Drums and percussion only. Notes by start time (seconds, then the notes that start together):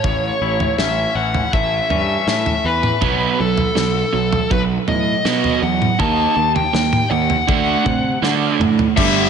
0.04 kick, floor tom
0.60 floor tom
0.79 snare
1.34 floor tom
1.53 kick
1.90 floor tom
2.28 snare
2.46 floor tom
2.83 mid tom
3.02 kick, floor tom
3.57 floor tom
3.77 snare
4.33 floor tom
4.51 kick
4.88 floor tom
5.25 snare
5.44 floor tom
5.82 mid tom
6.00 kick, floor tom
6.56 floor tom
6.75 snare
6.93 mid tom
7.30 floor tom
7.49 kick
7.86 kick, floor tom, mid tom
8.23 snare
8.61 mid tom
8.79 floor tom
8.97 kick, crash